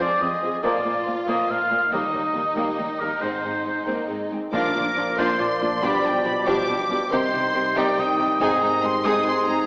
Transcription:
Already playing: harp F2 G#3 C5, violin section G#4
0.00 cello section F2, viola section F3, violin section C4, harp F4, oboe D5
0.21 cello section F2, viola section F3, violin section C4, harp C5, oboe D#5
0.42 cello section F2, viola section F3, harp G#3, violin section C4
0.63 cello section A#2, harp A#2, viola section F3, violin section A#3 F4, oboe D5
0.85 cello section A#2, viola section F3, violin section A#3, harp A#3
1.06 cello section A#2, viola section F3, violin section A#3, harp A#4
1.27 cello section A#2, viola section F3, violin section A#3, oboe D#5
1.48 cello section A#2, viola section F3, violin section A#3, oboe F5
1.70 cello section A#2, viola section F3, violin section A#3, harp A#3
1.92 cello section D#2, harp D#3, viola section G3, violin section A#3 D#4, oboe D#5
2.12 cello section D#2, viola section G3, violin section A#3, harp D#4
2.34 cello section D#2, viola section G3, violin section A#3, harp G4
2.56 cello section D#2, viola section G3, violin section A#3, harp A#4, oboe D#5
2.77 cello section D#2, viola section G3, violin section A#3, harp G4
2.99 cello section D#2, viola section G3, violin section A#3, harp D#4, oboe A#4
3.21 cello section G#2, harp G#2, viola section G#3, violin section C4, oboe C5
3.43 cello section G#2, viola section G#3, harp G#3, violin section C4
3.65 cello section G#2, viola section G#3, violin section C4, harp G#4
3.86 cello section G#2, viola section A#3, violin section C4, harp D#4
4.08 cello section G#2, viola section G#3, violin section C4, harp G#4
4.31 cello section G#2, harp G#3, viola section C4, violin section C4
4.52 double bass section A#1, cello section A#2, harp A#2, timpani A#2, trombone section A#2 F3, viola section F3 A#3, french horn section A#3 D4, violin section D4 F4 D6, oboe A#4
4.74 double bass section A#1, cello section A#2, viola section F3 A#3, harp F3, violin section D4 F4
4.96 double bass section A#1, cello section A#2, viola section F3 A#3, violin section D4 F4, harp D5
5.17 double bass section A#1, cello section A#2, viola section F3 A#3, violin section D4 F4 C6, oboe C5
5.39 double bass section A#1, cello section A#2, viola section F3 A#3, violin section D4 F4, harp D5, oboe D5
5.60 double bass section A#1, cello section A#2, harp F3, viola section F3 A#3, violin section D4 F4
5.82 double bass section B1, harp B2, cello section B2, trombone section B2, viola section F3 G3, french horn section G3, violin section D4 G4 B5, oboe D5
6.04 double bass section B1, cello section B2, viola section F3 G3, harp G3, violin section D4 G4 G5
6.24 double bass section B1, cello section B2, viola section F3 G3, violin section D4 G4 B5
6.45 double bass section B1, cello section B2, viola section F3 G3, violin section D4 G4 D6, harp F4, oboe G4
6.67 double bass section B1, cello section B2, viola section F3 G3, violin section D4 G4, harp D5
6.89 double bass section B1, cello section B2, viola section F3 G3, harp G3, violin section D4 G4
7.10 double bass section C2, trombone section C3 D#3, cello section C3, harp C3, viola section D#3 C4, violin section D#4 G4 C6, french horn section D#4, oboe C5
7.33 double bass section C2, cello section C3, viola section D#3 C4, harp G3, violin section D#4 G4
7.53 double bass section C2, cello section C3, viola section D#3 C4, violin section D#4 G4, harp D#5
7.75 double bass section C2, cello section C3, viola section D#3 C4, violin section D#4 G4 G5, harp D#4, oboe D5
7.97 double bass section C2, cello section C3, viola section D#3 C4, violin section D#4 G4, harp D#5, oboe D#5
8.19 double bass section C2, cello section C3, viola section D#3 C4, harp G3, violin section D#4 G4
8.40 double bass section G#1, cello section G#2, harp G#2, french horn section G#3 C4, viola section G#3 C4, violin section D#4 G#4 G#5, oboe D#5
8.61 double bass section G#1, cello section G#2, harp G#3, viola section G#3 C4, violin section D#4 G#4 A#5
8.83 double bass section G#1, cello section G#2, viola section G#3 C4, violin section D#4 G#4 C6, harp C5
9.04 double bass section G#1, cello section G#2, viola section G#3 C4, violin section D#4 G#4 D#6, oboe G#4
9.25 double bass section G#1, cello section G#2, viola section G#3 C4, violin section D#4 G#4 C6, harp C5
9.46 double bass section G#1, cello section G#2, viola section G#3 C4, harp G#3, violin section D#4 G#4 A#5

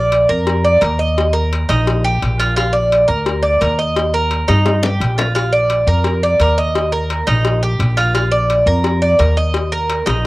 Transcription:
Already playing: upright bass A#1, cuban tres D5
0.12 cowbell
0.29 upright bass F2, cuban tres A#4
0.47 cowbell
0.64 cuban tres D5
0.81 upright bass D#2, cuban tres A#4, cowbell
0.99 cuban tres D#5
1.18 cowbell
1.33 cuban tres A#4
1.53 cowbell
1.69 upright bass A#1, cuban tres D#4, cowbell
1.87 cowbell
2.04 cuban tres G4
2.22 upright bass A#1, cowbell
2.40 cuban tres F4, cowbell
2.56 cuban tres F4, cowbell
2.73 cuban tres D5
2.92 cowbell
3.08 upright bass D2, cuban tres A#4
3.26 cowbell
3.43 cuban tres D5
3.61 upright bass D#2, cuban tres A#4, cowbell
3.79 cuban tres D#5
3.96 cowbell
4.14 cuban tres A#4
4.31 cowbell
4.48 upright bass G2, cuban tres D#4, cowbell, high bongo
4.66 cowbell, high bongo
4.83 cuban tres G4, low bongo
5.00 upright bass A#1, cowbell
5.18 cuban tres F4, cowbell, low bongo
5.35 cuban tres F4, cowbell
5.52 cuban tres D5
5.70 cowbell
5.87 upright bass F2, cuban tres A#4
6.04 cowbell
6.23 cuban tres D5
6.40 upright bass D#2, cuban tres A#4, cowbell
6.58 cuban tres D#5
6.75 cowbell
6.92 cuban tres A#4
7.10 cowbell
7.27 upright bass A#1, cuban tres D#4, cowbell
7.45 cowbell
7.63 cuban tres G4
7.79 upright bass A#1, cowbell
7.97 cuban tres F4, cowbell
8.15 cuban tres F4, cowbell
8.32 cuban tres D5
8.50 cowbell
8.66 upright bass F2, cuban tres A#4
8.84 cowbell
9.02 cuban tres D5
9.19 upright bass D#2, cuban tres A#4, cowbell
9.37 cuban tres D#5
9.54 cowbell
9.72 cuban tres A#4
9.90 cowbell
10.06 upright bass A#1, cuban tres D#4, cowbell, high bongo

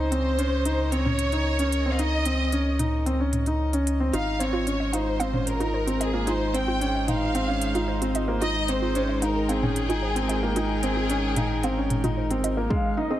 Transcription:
Already playing: analog synth bass C#2, string section C#3 C#4 G#4 D#5, violin section C5
0.03 string section A#4
0.11 felt piano C4, closed hi-hat
0.38 felt piano C#4, closed hi-hat
0.65 felt piano D#4, closed hi-hat
0.91 felt piano C4, violin section C#5, closed hi-hat
1.05 felt piano C#4, mid tom
1.19 closed hi-hat
1.32 felt piano D#4, closed hi-hat
1.59 felt piano C#4, closed hi-hat
1.72 closed hi-hat
1.86 felt piano C4
1.92 violin section F5
1.98 felt piano D#4, violin section D#5, closed hi-hat
2.25 felt piano C4, closed hi-hat
2.52 felt piano C#4, closed hi-hat
2.79 felt piano D#4, closed hi-hat, mid tom
3.06 felt piano C4, closed hi-hat
3.20 felt piano C#4
3.33 closed hi-hat, mid tom
3.46 felt piano D#4, closed hi-hat
3.73 felt piano C#4, closed hi-hat
3.87 closed hi-hat
4.00 felt piano C4
4.13 analog synth bass G#1, string section G#3, felt piano D#4, synth arpeggio sound F4, violin section F5, closed hi-hat
4.39 felt piano C4, string section F4, synth arpeggio sound C5, violin section C#5, closed hi-hat
4.46 string section D#4
4.53 synth arpeggio sound F4
4.67 felt piano C#4, closed hi-hat
4.80 synth arpeggio sound D#5
4.93 felt piano D#4, violin section C5, synth arpeggio sound F5, closed hi-hat
5.20 felt piano C4, synth arpeggio sound F5, closed hi-hat
5.33 felt piano C#4, mid tom
5.47 violin section A#4, closed hi-hat
5.60 felt piano D#4, synth arpeggio sound F4, closed hi-hat
5.74 synth arpeggio sound C5
5.87 felt piano C4, synth arpeggio sound F4, closed hi-hat
5.93 string section C5
6.01 violin section G#4, synth arpeggio sound D#5, closed hi-hat
6.13 felt piano A#3, synth arpeggio sound F4
6.27 felt piano D#4, synth arpeggio sound F4, violin section C5, closed hi-hat
6.54 felt piano C4, synth arpeggio sound C5, violin section G5, closed hi-hat
6.68 synth arpeggio sound F4
6.81 felt piano C#4, closed hi-hat
6.95 synth arpeggio sound D#5
7.08 felt piano D#4, synth arpeggio sound F5, violin section F5, closed hi-hat, mid tom
7.35 felt piano C4, synth arpeggio sound F5, closed hi-hat
7.48 felt piano C#4
7.62 closed hi-hat
7.75 felt piano D#4, synth arpeggio sound F4, closed hi-hat
7.88 synth arpeggio sound C5
8.01 felt piano C4, synth arpeggio sound F4, closed hi-hat
8.15 synth arpeggio sound D#5, closed hi-hat
8.28 felt piano A#3, synth arpeggio sound F4
8.42 felt piano D#4, synth arpeggio sound F4, violin section D#5, closed hi-hat
8.49 string section G5
8.68 felt piano C4, synth arpeggio sound C5, violin section C5, closed hi-hat
8.82 synth arpeggio sound F4
8.95 felt piano C#4, closed hi-hat
9.09 synth arpeggio sound D#5
9.22 felt piano D#4, violin section A#4, synth arpeggio sound F5, closed hi-hat
9.49 felt piano C4, violin section G#4, synth arpeggio sound F5, closed hi-hat
9.63 felt piano C#4, mid tom
9.76 string section A#4, closed hi-hat
9.89 felt piano D#4, synth arpeggio sound F4, closed hi-hat
10.02 synth arpeggio sound C5
10.15 felt piano C4, synth arpeggio sound F4, closed hi-hat
10.29 synth arpeggio sound D#5, closed hi-hat
10.43 felt piano A#3, synth arpeggio sound F4
10.56 felt piano D#4, synth arpeggio sound F4, violin section G#4, closed hi-hat
10.83 felt piano C4, synth arpeggio sound C5, closed hi-hat
10.96 synth arpeggio sound F4
11.10 felt piano C#4, closed hi-hat
11.23 synth arpeggio sound D#5
11.36 felt piano D#4, synth arpeggio sound F5, closed hi-hat, mid tom
11.63 felt piano C4, synth arpeggio sound F5, closed hi-hat
11.77 felt piano C#4
11.90 closed hi-hat, mid tom
12.04 felt piano D#4, synth arpeggio sound F4, closed hi-hat, mid tom
12.17 synth arpeggio sound C5
12.31 felt piano C4, synth arpeggio sound F4, closed hi-hat
12.44 synth arpeggio sound D#5, closed hi-hat
12.57 felt piano A#3, synth arpeggio sound F4
12.70 string section C#3, felt piano G#3, synth arpeggio sound G#4, violin section F5, kick
12.97 string section C#4, felt piano D#4, synth arpeggio sound D#5, violin section D#5
13.04 string section D#5
13.10 felt piano C4, synth arpeggio sound G#4

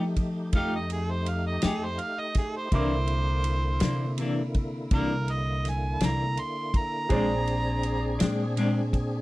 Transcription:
Already playing: upright bass F3, tonewheel organ A3 D#4 G4, upright piano G4 A4 D#5
0.16 kick, ride
0.53 upright bass F2, clean electric guitar F3 A3 D#4, harmonica F5, kick, ride
0.57 clean electric guitar G4
0.76 harmonica D#5
0.90 harmonica G#4, ride
1.11 harmonica C5
1.26 harmonica F5, ride
1.47 harmonica D#5
1.62 upright bass F2, clean electric guitar A3 D#4 G4, snare, ride
1.66 harmonica G#4
1.85 harmonica C5
1.99 harmonica F5, ride
2.19 harmonica D#5
2.35 harmonica G#4, kick, snare, ride
2.57 harmonica C5
2.72 upright bass C2, clean electric guitar C3 E3 A#3 D4, tonewheel organ D3 A#3 E4, upright piano E4 A#4 D6, harmonica C5, kick, ride
3.07 ride
3.44 ride
3.80 upright bass C3, clean electric guitar A#3 D4, snare, ride
3.85 clean electric guitar E3
4.18 clean electric guitar C3 E3 A#3, ride
4.23 clean electric guitar D4
4.54 kick, ride
4.91 upright bass C2, clean electric guitar C3 E3 A#3 D4, harmonica A#4, kick, ride
5.28 ride
5.32 harmonica D#5
5.65 snare, ride
5.69 harmonica G#5
6.00 upright bass C2, clean electric guitar E3 A#3 D4, snare, ride
6.06 harmonica A#5
6.37 harmonica C6, ride
6.74 harmonica A#5, kick, ride
7.09 upright bass A#1, clean electric guitar A#2 G#3 C4 D4, tonewheel organ D4, upright piano G#4 C5 D5, kick, ride
7.13 tonewheel organ C4 G#4
7.47 ride
7.83 ride
8.19 upright bass A#2, clean electric guitar G#3 C4 D4, snare, ride
8.56 clean electric guitar A#2 G#3 C4, ride
8.60 clean electric guitar D4
8.93 kick, ride

